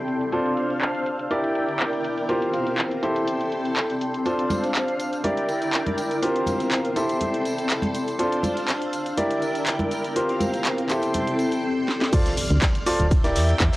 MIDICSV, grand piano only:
0, 0, Header, 1, 2, 480
1, 0, Start_track
1, 0, Key_signature, -1, "minor"
1, 0, Tempo, 491803
1, 316, Time_signature, 4, 2, 24, 8
1, 13437, End_track
2, 0, Start_track
2, 0, Title_t, "Grand piano"
2, 0, Program_c, 0, 0
2, 0, Note_on_c, 0, 64, 70
2, 0, Note_on_c, 0, 67, 67
2, 0, Note_on_c, 0, 69, 66
2, 0, Note_on_c, 0, 72, 80
2, 289, Note_off_c, 0, 64, 0
2, 289, Note_off_c, 0, 67, 0
2, 289, Note_off_c, 0, 69, 0
2, 289, Note_off_c, 0, 72, 0
2, 315, Note_on_c, 0, 62, 72
2, 315, Note_on_c, 0, 65, 66
2, 315, Note_on_c, 0, 69, 68
2, 315, Note_on_c, 0, 72, 80
2, 1249, Note_off_c, 0, 62, 0
2, 1249, Note_off_c, 0, 65, 0
2, 1249, Note_off_c, 0, 69, 0
2, 1249, Note_off_c, 0, 72, 0
2, 1275, Note_on_c, 0, 64, 73
2, 1275, Note_on_c, 0, 74, 81
2, 1276, Note_on_c, 0, 67, 69
2, 1276, Note_on_c, 0, 70, 70
2, 2209, Note_off_c, 0, 64, 0
2, 2209, Note_off_c, 0, 67, 0
2, 2209, Note_off_c, 0, 70, 0
2, 2209, Note_off_c, 0, 74, 0
2, 2235, Note_on_c, 0, 67, 69
2, 2235, Note_on_c, 0, 70, 65
2, 2235, Note_on_c, 0, 72, 76
2, 2236, Note_on_c, 0, 65, 75
2, 2929, Note_off_c, 0, 65, 0
2, 2929, Note_off_c, 0, 67, 0
2, 2929, Note_off_c, 0, 70, 0
2, 2929, Note_off_c, 0, 72, 0
2, 2954, Note_on_c, 0, 64, 71
2, 2954, Note_on_c, 0, 72, 82
2, 2955, Note_on_c, 0, 67, 69
2, 2955, Note_on_c, 0, 69, 67
2, 4128, Note_off_c, 0, 64, 0
2, 4128, Note_off_c, 0, 67, 0
2, 4128, Note_off_c, 0, 69, 0
2, 4128, Note_off_c, 0, 72, 0
2, 4154, Note_on_c, 0, 62, 75
2, 4154, Note_on_c, 0, 65, 67
2, 4154, Note_on_c, 0, 69, 66
2, 4154, Note_on_c, 0, 72, 81
2, 5088, Note_off_c, 0, 62, 0
2, 5088, Note_off_c, 0, 65, 0
2, 5088, Note_off_c, 0, 69, 0
2, 5088, Note_off_c, 0, 72, 0
2, 5114, Note_on_c, 0, 64, 72
2, 5114, Note_on_c, 0, 67, 65
2, 5114, Note_on_c, 0, 70, 69
2, 5114, Note_on_c, 0, 74, 84
2, 6048, Note_off_c, 0, 64, 0
2, 6048, Note_off_c, 0, 67, 0
2, 6048, Note_off_c, 0, 70, 0
2, 6048, Note_off_c, 0, 74, 0
2, 6074, Note_on_c, 0, 65, 71
2, 6074, Note_on_c, 0, 67, 69
2, 6074, Note_on_c, 0, 70, 65
2, 6074, Note_on_c, 0, 72, 78
2, 6768, Note_off_c, 0, 65, 0
2, 6768, Note_off_c, 0, 67, 0
2, 6768, Note_off_c, 0, 70, 0
2, 6768, Note_off_c, 0, 72, 0
2, 6794, Note_on_c, 0, 64, 76
2, 6794, Note_on_c, 0, 67, 66
2, 6794, Note_on_c, 0, 69, 70
2, 6794, Note_on_c, 0, 72, 83
2, 7968, Note_off_c, 0, 64, 0
2, 7968, Note_off_c, 0, 67, 0
2, 7968, Note_off_c, 0, 69, 0
2, 7968, Note_off_c, 0, 72, 0
2, 7993, Note_on_c, 0, 65, 69
2, 7994, Note_on_c, 0, 62, 72
2, 7994, Note_on_c, 0, 69, 67
2, 7994, Note_on_c, 0, 72, 82
2, 8928, Note_off_c, 0, 62, 0
2, 8928, Note_off_c, 0, 65, 0
2, 8928, Note_off_c, 0, 69, 0
2, 8928, Note_off_c, 0, 72, 0
2, 8953, Note_on_c, 0, 64, 77
2, 8953, Note_on_c, 0, 70, 65
2, 8954, Note_on_c, 0, 67, 68
2, 8954, Note_on_c, 0, 74, 86
2, 9888, Note_off_c, 0, 64, 0
2, 9888, Note_off_c, 0, 67, 0
2, 9888, Note_off_c, 0, 70, 0
2, 9888, Note_off_c, 0, 74, 0
2, 9915, Note_on_c, 0, 65, 74
2, 9915, Note_on_c, 0, 67, 70
2, 9915, Note_on_c, 0, 70, 68
2, 9915, Note_on_c, 0, 72, 82
2, 10609, Note_off_c, 0, 65, 0
2, 10609, Note_off_c, 0, 67, 0
2, 10609, Note_off_c, 0, 70, 0
2, 10609, Note_off_c, 0, 72, 0
2, 10634, Note_on_c, 0, 67, 70
2, 10634, Note_on_c, 0, 72, 81
2, 10635, Note_on_c, 0, 64, 76
2, 10635, Note_on_c, 0, 69, 70
2, 11355, Note_off_c, 0, 64, 0
2, 11355, Note_off_c, 0, 67, 0
2, 11355, Note_off_c, 0, 69, 0
2, 11355, Note_off_c, 0, 72, 0
2, 11834, Note_on_c, 0, 72, 69
2, 11834, Note_on_c, 0, 74, 87
2, 11835, Note_on_c, 0, 65, 79
2, 11835, Note_on_c, 0, 69, 71
2, 12005, Note_off_c, 0, 65, 0
2, 12005, Note_off_c, 0, 69, 0
2, 12005, Note_off_c, 0, 72, 0
2, 12005, Note_off_c, 0, 74, 0
2, 12554, Note_on_c, 0, 65, 101
2, 12554, Note_on_c, 0, 69, 91
2, 12554, Note_on_c, 0, 72, 87
2, 12554, Note_on_c, 0, 74, 108
2, 12725, Note_off_c, 0, 65, 0
2, 12725, Note_off_c, 0, 69, 0
2, 12725, Note_off_c, 0, 72, 0
2, 12725, Note_off_c, 0, 74, 0
2, 12922, Note_on_c, 0, 64, 77
2, 12922, Note_on_c, 0, 67, 68
2, 12922, Note_on_c, 0, 70, 69
2, 12922, Note_on_c, 0, 74, 89
2, 13185, Note_off_c, 0, 64, 0
2, 13185, Note_off_c, 0, 67, 0
2, 13185, Note_off_c, 0, 70, 0
2, 13185, Note_off_c, 0, 74, 0
2, 13437, End_track
0, 0, End_of_file